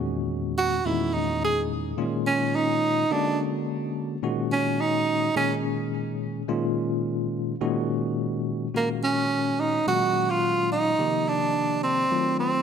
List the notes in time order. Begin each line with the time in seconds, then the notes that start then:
Already playing: E2 A#2 D#3 G#3 C#4 F#4
0.58 F#4
0.86 E2 A#2 D#3 G#3 C#4 D#4 E4
1.13 D#4
1.45 G#4
1.98 A#2 D#3 G#3 C#4 F4
2.27 C#4
2.55 D#4
3.11 D3 G#3 A#3 C#4 D4 F#4
4.23 A#2 D#3 G#3 C#4 F#4
4.52 C#4
4.81 D#4
5.36 A#2 D#3 G#3 C#4 G#4
6.48 A#2 D#3 G#3 C#4 F4
7.61 A#2 D#3 G#3 C#4 F#4
8.74 A#2 D#3 G#3 A#3 C#4 F#4
9.04 C#4
9.60 D#4
9.87 A#2 D#3 F#3 G#3 C#4 F#4
10.30 F4
10.72 D#4
10.98 C3 D#3 F3 A#3 G4
11.28 D4
11.83 C4
12.11 D#3 F#3 A3 C4 F4
12.39 C4